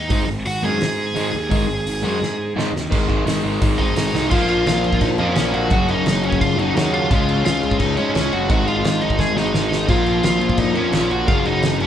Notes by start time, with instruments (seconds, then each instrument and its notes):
Already playing: lead electric guitar D#4 D#5
0.10 picked electric bass G#1, distorted electric guitar G#2 D#3 G#3, kick, open hi-hat
0.28 picked electric bass G#1
0.46 picked electric bass G#1, lead electric guitar F#4 F#5, open hi-hat
0.63 picked electric bass F#2, distorted electric guitar G#2 D#3 G#3, lead electric guitar G#4 G#5
0.81 picked electric bass G#2, snare, open hi-hat
1.15 distorted electric guitar G#2 D#3 G#3, picked electric bass G#2, open hi-hat
1.34 picked electric bass D#2
1.50 picked electric bass G#1, distorted electric guitar G#2 D#3 G#3, kick, open hi-hat
1.68 picked electric bass G#1
1.87 picked electric bass G#1, open hi-hat
2.03 picked electric bass F#2, distorted electric guitar G#2 D#3 G#3
2.21 picked electric bass G#2, snare
2.56 distorted electric guitar G#2 D#3 G#3, picked electric bass G#2, snare
2.73 picked electric bass D#2, snare
2.90 picked electric bass G#1, distorted electric guitar G#2 D#3 G#3, kick, crash
3.08 picked electric bass G#1, distorted electric guitar G#2 D#3 G#3, kick
3.26 picked electric bass G#1, distorted electric guitar G#2 D#3 G#3, snare, open hi-hat
3.43 picked electric bass G#1, distorted electric guitar G#2 D#3 G#3
3.61 picked electric bass G#1, distorted electric guitar G#2 D#3 G#3, kick, open hi-hat
3.78 picked electric bass G#1, distorted electric guitar G#2 D#3 G#3, lead electric guitar D#4 D#5, kick
3.96 picked electric bass G#1, distorted electric guitar G#2 D#3 G#3, snare, open hi-hat
4.14 picked electric bass C2, distorted electric guitar G#2 D#3 G#3, snare
4.30 picked electric bass A#1, distorted electric guitar A#2 F3 A#3, lead electric guitar F4 F5, kick, crash
4.49 lead electric guitar F4 F5, crash
4.66 picked electric bass A#1, lead electric guitar F4 F5, snare, crash
4.84 picked electric bass A#1, crash
4.93 kick
5.01 picked electric bass A#1, lead electric guitar D#4 D#5, kick, crash
5.18 picked electric bass F2, distorted electric guitar A#2 F3 A#3, lead electric guitar C#4 C#5, crash
5.35 picked electric bass A#1, distorted electric guitar A#2 F3 A#3, snare, crash
5.54 picked electric bass A#1, lead electric guitar F#4 F#5, crash
5.70 picked electric bass F#1, distorted electric guitar F#2 C#3 F#3, kick, crash
5.88 picked electric bass F#1, lead electric guitar D#4 D#5, crash
6.06 picked electric bass F#1, snare, crash
6.23 picked electric bass F#1, lead electric guitar C#4 C#5, crash
6.32 kick
6.41 picked electric bass F#1, lead electric guitar F4 F5, kick, crash
6.57 picked electric bass F#1, distorted electric guitar F#2 C#3 F#3, lead electric guitar D#4 D#5, crash
6.74 picked electric bass D#2, distorted electric guitar F#2 C#3 F#3, snare, crash
6.94 lead electric guitar F4 F5, crash
7.10 picked electric bass C#2, distorted electric guitar C#3 G#3 C#4, kick, crash
7.29 crash
7.45 picked electric bass C#2, lead electric guitar F4 F5, snare, crash
7.63 picked electric bass C#2, crash
7.71 kick
7.79 picked electric bass C#2, lead electric guitar D#4 D#5, kick, crash
7.97 picked electric bass G#2, distorted electric guitar C#3 G#3 C#4, lead electric guitar C#4 C#5, crash
8.13 picked electric bass C#2, distorted electric guitar C#3 G#3 C#4, snare, crash
8.32 picked electric bass F#1, lead electric guitar F#4 F#5, crash
8.48 picked electric bass G#1, distorted electric guitar G#2 D#3 G#3, lead electric guitar F#4 F#5, kick, crash
8.67 picked electric bass G#1, lead electric guitar F4 F5, crash
8.84 picked electric bass G#1, snare, crash
9.01 picked electric bass G#1, lead electric guitar D#4 D#5, crash
9.10 kick
9.19 picked electric bass G#1, lead electric guitar G#4 G#5, kick, snare
9.35 picked electric bass G#1, distorted electric guitar G#2 D#3 G#3, lead electric guitar D#4 D#5, snare
9.52 picked electric bass G#1, distorted electric guitar G#2 D#3 G#3, snare
9.72 snare
9.87 picked electric bass A#1, distorted electric guitar A#2 F3 A#3, lead electric guitar F4 F5, kick, crash
10.06 crash
10.23 picked electric bass A#1, lead electric guitar F4 F5, snare, crash
10.40 picked electric bass A#1, crash
10.50 kick
10.57 picked electric bass A#1, lead electric guitar D#4 D#5, kick, crash
10.74 picked electric bass F2, distorted electric guitar A#2 F3 A#3, lead electric guitar C#4 C#5, crash
10.92 picked electric bass A#1, distorted electric guitar A#2 F3 A#3, snare, crash
11.10 picked electric bass A#1, lead electric guitar F#4 F#5, crash
11.26 picked electric bass F#1, distorted electric guitar F#2 C#3 F#3, lead electric guitar F4 F5, kick, crash
11.45 picked electric bass F#1, lead electric guitar D#4 D#5, crash
11.63 picked electric bass F#1, snare, crash
11.80 picked electric bass F#1, lead electric guitar C#4 C#5, crash